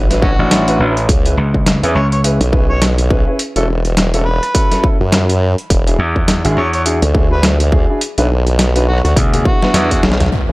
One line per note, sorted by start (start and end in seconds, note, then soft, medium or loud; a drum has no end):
0.00 0.37 A1 loud
0.10 0.19 D4 medium
0.10 0.18 E4 medium
0.10 0.18 F#4 medium
0.10 0.18 B4 loud
0.10 snare soft
0.10 closed hi-hat soft
0.22 0.30 C#4 medium
0.22 0.34 D4 medium
0.22 0.34 E4 medium
0.22 0.80 F#4 medium
0.22 0.34 F#4 medium
0.22 0.34 B4 medium
0.22 kick loud
0.39 0.78 A1 medium
0.39 0.64 D4 medium
0.39 0.64 E4 medium
0.39 0.64 F#4 medium
0.39 0.64 D5 loud
0.51 snare loud
0.51 closed hi-hat medium
0.68 0.77 D4 medium
0.68 0.77 E4 medium
0.68 0.77 F#4 medium
0.68 0.77 B4 loud
0.68 closed hi-hat soft
0.80 1.07 A1 medium
0.80 0.92 D4 medium
0.80 0.92 E4 medium
0.80 0.92 F#4 medium
0.80 0.92 B4 medium
0.97 closed hi-hat soft
1.09 1.36 C#2 loud
1.09 kick loud
1.09 closed hi-hat medium
1.25 1.34 C#4 medium
1.25 1.34 E4 medium
1.25 1.34 G#4 medium
1.25 1.34 B4 medium
1.25 closed hi-hat soft
1.37 1.81 C#2 medium
1.54 kick medium
1.66 cross-stick soft
1.66 snare loud
1.66 closed hi-hat medium
1.83 1.93 E2 medium
1.83 1.97 C#4 loud
1.83 1.97 E4 medium
1.83 1.97 G#4 medium
1.83 1.97 B4 loud
1.83 closed hi-hat soft
1.95 2.38 C#2 medium
1.95 2.06 C#5 medium
1.95 cross-stick soft
2.12 2.20 C#5 medium
2.12 closed hi-hat soft
2.24 2.36 C#4 medium
2.24 2.36 E4 medium
2.24 2.36 G#4 medium
2.24 2.36 B4 medium
2.24 closed hi-hat medium
2.41 3.25 B1 medium
2.41 closed hi-hat soft
2.53 2.71 C#4 medium
2.53 2.71 E4 medium
2.53 2.71 G#4 medium
2.53 2.71 B4 medium
2.53 kick loud
2.70 2.81 C#5 medium
2.82 snare loud
2.82 closed hi-hat medium
2.98 closed hi-hat soft
3.10 3.25 C#4 medium
3.10 3.25 E4 medium
3.10 3.25 G#4 medium
3.10 3.25 B4 medium
3.10 kick loud
3.27 3.36 C#4 medium
3.27 3.36 E4 medium
3.27 3.36 G#4 medium
3.27 3.36 B4 medium
3.39 closed hi-hat medium
3.56 4.40 E1 loud
3.56 3.65 C#4 medium
3.56 3.65 E4 medium
3.56 3.65 F#4 medium
3.56 3.65 A4 loud
3.56 closed hi-hat soft
3.85 closed hi-hat soft
3.97 cross-stick soft
3.97 snare loud
3.97 closed hi-hat medium
4.14 4.22 C#4 medium
4.14 4.22 E4 medium
4.14 4.22 F#4 medium
4.14 4.22 A4 medium
4.14 closed hi-hat soft
4.26 4.84 B4 medium
4.43 cross-stick soft
4.43 closed hi-hat soft
4.55 4.69 C#4 medium
4.55 4.69 E4 medium
4.55 4.69 F#4 medium
4.55 4.69 A4 medium
4.55 kick loud
4.55 closed hi-hat medium
4.72 4.80 C#4 medium
4.72 4.80 E4 medium
4.72 4.80 F#4 medium
4.72 4.80 A4 loud
4.72 snare soft
4.72 closed hi-hat soft
4.84 4.95 C#4 medium
4.84 4.95 E4 medium
4.84 4.95 F#4 medium
4.84 4.95 A4 medium
4.84 kick loud
5.01 5.56 F#2 medium
5.12 snare loud
5.12 closed hi-hat medium
5.29 closed hi-hat soft
5.58 closed hi-hat soft
5.70 5.97 E1 medium
5.70 kick loud
5.70 closed hi-hat medium
5.87 5.95 D4 medium
5.87 5.95 E4 medium
5.87 5.95 F#4 medium
5.87 5.95 G#4 medium
5.87 closed hi-hat soft
5.99 6.42 E2 medium
6.16 kick medium
6.28 cross-stick soft
6.28 snare loud
6.28 closed hi-hat medium
6.44 6.55 G#1 medium
6.44 6.58 D4 medium
6.44 6.58 E4 medium
6.44 6.58 F#4 medium
6.44 6.58 G#4 loud
6.44 closed hi-hat soft
6.57 7.00 E2 loud
6.57 6.68 C#5 medium
6.57 cross-stick soft
6.73 6.82 C#5 medium
6.73 closed hi-hat soft
6.86 6.97 D4 medium
6.86 6.97 E4 medium
6.86 6.97 F#4 medium
6.86 6.97 G#4 medium
6.86 closed hi-hat medium
7.02 7.86 D2 medium
7.02 closed hi-hat medium
7.15 7.33 D4 medium
7.15 7.33 E4 medium
7.15 7.33 F#4 medium
7.15 7.33 G#4 medium
7.15 kick loud
7.32 7.43 B4 medium
7.43 snare loud
7.43 closed hi-hat medium
7.60 closed hi-hat medium
7.72 7.87 D4 medium
7.72 7.87 E4 medium
7.72 7.87 F#4 medium
7.72 7.87 G#4 medium
7.72 kick loud
7.89 7.97 D4 medium
7.89 7.97 E4 medium
7.89 7.97 F#4 medium
7.89 7.97 G#4 medium
8.01 closed hi-hat medium
8.18 9.02 B1 medium
8.18 8.26 D4 medium
8.18 8.26 E4 medium
8.18 8.26 F#4 medium
8.18 8.26 B4 loud
8.18 closed hi-hat soft
8.47 closed hi-hat soft
8.59 cross-stick soft
8.59 snare loud
8.59 closed hi-hat medium
8.75 8.84 D4 medium
8.75 8.84 E4 medium
8.75 8.84 F#4 medium
8.75 8.84 B4 medium
8.75 closed hi-hat medium
8.88 8.99 F#4 medium
8.93 cross-stick soft
8.98 cross-stick soft
9.05 9.15 D2 loud
9.05 9.13 F#4 medium
9.05 cross-stick soft
9.05 closed hi-hat soft
9.16 9.43 D2 medium
9.16 9.31 B3 medium
9.16 9.31 D4 medium
9.16 9.31 E4 medium
9.16 9.31 G#4 medium
9.16 kick loud
9.16 closed hi-hat medium
9.16 high tom medium
9.34 9.42 B3 medium
9.34 9.42 D4 medium
9.34 9.42 E4 medium
9.34 9.42 G#4 loud
9.34 closed hi-hat medium
9.34 high tom medium
9.45 9.57 B3 medium
9.45 9.57 D4 medium
9.45 9.57 E4 medium
9.45 10.03 F#4 medium
9.45 kick loud
9.62 9.87 B3 medium
9.62 9.87 D4 medium
9.62 9.87 E4 medium
9.62 9.87 B4 loud
9.62 snare medium
9.74 10.01 E2 loud
9.74 snare loud
9.74 closed hi-hat medium
9.91 10.00 B3 medium
9.91 10.00 D4 medium
9.91 10.00 E4 medium
9.91 10.00 G#4 medium
9.91 kick medium
9.91 closed hi-hat medium
10.03 10.30 B1 loud
10.03 10.15 B3 medium
10.03 10.15 D4 medium
10.03 10.15 E4 medium
10.03 10.15 G#4 medium
10.03 snare medium
10.12 snare medium
10.20 snare medium
10.20 closed hi-hat soft
10.20 mid tom medium
10.26 snare soft
10.32 closed hi-hat medium
10.32 impact medium
10.49 10.52 B3 medium
10.49 10.52 C#4 medium
10.49 10.52 E4 medium
10.49 10.52 G#4 medium